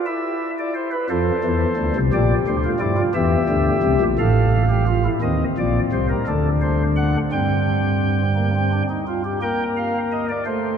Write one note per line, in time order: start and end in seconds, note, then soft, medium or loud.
0.06 0.95 E4 medium
0.06 0.51 E5 medium
0.59 0.73 D5 medium
0.75 0.90 C5 medium
0.91 1.07 B4 medium
1.10 1.31 F2 medium
1.10 1.31 F3 medium
1.10 1.98 A4 medium
1.10 1.98 C5 medium
1.44 1.65 E2 medium
1.44 1.65 E3 medium
1.77 1.92 D2 medium
1.77 1.92 D3 medium
1.96 2.10 C2 medium
1.96 2.10 C3 medium
2.13 2.34 A#1 medium
2.13 2.34 A#2 medium
2.13 2.56 G4 medium
2.13 2.34 D5 medium
2.47 2.69 D2 medium
2.47 2.68 D3 medium
2.47 2.69 C5 medium
2.64 2.79 F4 medium
2.79 3.01 G2 medium
2.79 3.01 G3 medium
2.79 2.95 E4 medium
2.79 3.01 D5 medium
2.97 3.12 F4 medium
3.14 3.36 E2 medium
3.14 3.36 E3 medium
3.14 4.03 G4 medium
3.14 4.03 E5 medium
3.49 3.71 D2 medium
3.49 3.71 D3 medium
3.83 3.98 C2 medium
3.83 3.98 C3 medium
4.00 4.16 A#1 medium
4.00 4.15 A#2 medium
4.19 5.08 A1 medium
4.19 5.08 A2 medium
4.19 4.63 A4 medium
4.19 5.08 F5 medium
4.69 4.84 G4 medium
4.87 5.02 F4 medium
5.04 5.19 E4 medium
5.22 5.43 D#2 medium
5.22 5.44 D#3 medium
5.22 6.12 C4 medium
5.22 5.44 D#5 medium
5.58 5.79 A#1 medium
5.58 5.79 A#2 medium
5.58 5.79 D5 medium
5.92 6.13 C2 medium
5.92 6.14 C3 medium
5.92 6.07 C5 medium
6.09 6.24 A#4 medium
6.27 7.16 D2 medium
6.27 7.16 D3 medium
6.27 7.17 D4 medium
6.27 6.49 A4 medium
6.62 6.83 C5 medium
6.96 7.18 F#5 medium
7.32 8.82 G2 medium
7.32 8.82 G3 medium
7.32 8.21 C4 medium
7.32 8.82 G5 medium
8.35 8.50 A#3 medium
8.55 8.69 C4 medium
8.72 8.87 D4 medium
8.90 9.04 D#4 soft
9.07 9.22 F4 medium
9.25 9.39 G4 medium
9.41 10.31 A#3 medium
9.41 10.31 A#4 medium
9.41 9.63 G5 medium
9.77 9.98 F5 medium
10.11 10.26 D#5 medium
10.29 10.43 D5 medium
10.46 10.78 A3 medium
10.46 10.78 C5 medium